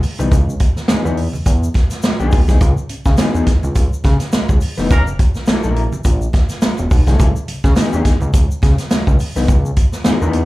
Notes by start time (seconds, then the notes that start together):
0.03 open hi-hat, shaker
0.19 C2 E3 B3 D#4 B4, closed hi-hat, high conga, shaker
0.31 C#2, kick, closed hi-hat, muted conga, shaker
0.49 shaker
0.60 kick, closed hi-hat
0.76 E2, snare, shaker
0.88 E2 E3 B3 D#4 G#4, snare, closed hi-hat, high conga, shaker
1.05 E2 E3 B3 D#4 B4, shaker
1.17 open hi-hat
1.33 low conga, shaker
1.46 E2, kick, closed hi-hat, muted conga, shaker
1.63 shaker
1.74 kick, snare, closed hi-hat, muted conga
1.91 snare, closed hi-hat, shaker
2.03 snare, closed hi-hat, high conga, shaker
2.20 B1 E3 B3 D#4 G#4, shaker
2.32 B1, kick, open hi-hat, shaker
2.48 C2 E3 B3 D#4 G#4, kick, snare, closed hi-hat, high conga, shaker
2.61 C#2, kick, closed hi-hat, muted conga, shaker
2.77 shaker
2.89 C#3, closed hi-hat
3.05 C#3, kick, snare, shaker
3.17 E3 B3 D#4 G#4, snare, closed hi-hat, high conga, shaker
3.35 E2 E3 B3 D#4 G#4, shaker
3.46 kick, snare, closed hi-hat
3.63 C#2, low conga, shaker
3.75 C#2, kick, closed hi-hat, muted conga, shaker
3.93 shaker
4.04 C#3, kick, snare, closed hi-hat, muted conga
4.20 snare, closed hi-hat, shaker
4.32 C#2, snare, closed hi-hat, high conga, shaker
4.49 C#2, kick, shaker
4.61 open hi-hat, shaker
4.77 F1 E3 B3 D#4 B4, snare, high conga, shaker
4.90 F#1 E3 A#3 C#4 A#4, kick, closed hi-hat, muted conga, shaker
5.07 shaker
5.19 kick, closed hi-hat, muted conga
5.35 A#1, snare, shaker
5.46 A#1 F#3 A#3 E4 A4, snare, closed hi-hat, high conga, shaker
5.63 A#1 F#3 A#3 E4 A#4, shaker
5.76 closed hi-hat
5.92 low conga, shaker
6.04 A#1, kick, closed hi-hat, muted conga, low conga, shaker
6.22 shaker
6.33 kick, snare, closed hi-hat, muted conga
6.49 snare, closed hi-hat, shaker
6.62 snare, closed hi-hat, high conga, shaker
6.78 E1, shaker
6.91 B1, kick, open hi-hat, shaker
7.07 C2 F#3 A#3 E4 A4, kick, snare, closed hi-hat, high conga, shaker
7.19 C#2, kick, closed hi-hat, muted conga, shaker
7.36 shaker
7.48 C#3, closed hi-hat, muted conga
7.64 C#3, kick, snare, shaker
7.76 E3 B3 D#4 G#4, snare, closed hi-hat, high conga, shaker
7.93 E2 E3 B3 D#4 G#4, shaker
8.05 kick, snare, closed hi-hat
8.21 C#2, low conga, shaker
8.33 C#2, kick, closed hi-hat, muted conga, shaker
8.51 shaker
8.62 C#3, kick, snare, closed hi-hat, muted conga
8.78 snare, closed hi-hat, shaker
8.91 C#2, snare, closed hi-hat, high conga, shaker
9.07 C#2, kick, shaker
9.19 open hi-hat, shaker
9.36 C2 E3 B3 D#4 B4, snare, high conga, shaker
9.48 C#2, kick, closed hi-hat, muted conga, shaker
9.66 shaker
9.76 kick, closed hi-hat, muted conga
9.92 E2, snare, shaker
10.04 E2 E3 B3 D#4 G#4, snare, closed hi-hat, high conga, shaker
10.21 E2 E3 B3 D#4 B4, shaker
10.33 closed hi-hat